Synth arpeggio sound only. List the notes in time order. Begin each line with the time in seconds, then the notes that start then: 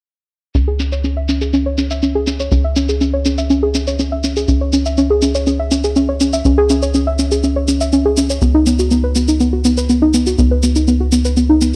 0.55 C#4
0.68 G#4
0.80 C#4
0.92 C#5
1.04 C#4
1.17 E5
1.29 C#4
1.41 G#4
1.53 C#4
1.66 C#5
1.78 C#4
1.91 E5
2.03 C#4
2.15 G#4
2.27 C#4
2.40 C#5
2.52 C#4
2.64 E5
2.76 C#4
2.89 G#4
3.01 C#4
3.13 C#5
3.25 C#4
3.38 E5
3.50 C#4
3.63 G#4
3.75 C#4
3.87 C#5
3.99 C#4
4.12 E5
4.24 C#4
4.37 G#4
4.48 C#4
4.61 C#5
4.73 C#4
4.86 E5
4.98 C#4
5.10 G#4
5.22 C#4
5.35 C#5
5.47 C#4
5.59 E5
5.71 C#4
5.84 G#4
5.96 C#4
6.09 C#5
6.21 C#4
6.33 E5
6.45 C#4
6.58 G#4
6.70 C#4
6.82 C#5
6.94 C#4
7.07 E5
7.19 C#4
7.32 G#4
7.43 C#4
7.56 C#5
7.68 C#4
7.81 E5
7.93 C#4
8.05 G#4
8.17 C#4
8.30 C#5
8.42 B3
8.54 D#4
8.66 B3
8.79 F#4
8.91 B3
9.04 B4
9.16 B3
9.28 D#4
9.40 B3
9.53 F#4
9.65 B3
9.77 B4
9.89 B3
10.02 D#4
10.14 B3
10.27 F#4
10.39 B3
10.51 B4
10.63 B3
10.76 D#4
10.88 B3
11.00 F#4
11.12 B3
11.25 B4
11.37 B3
11.49 D#4
11.61 B3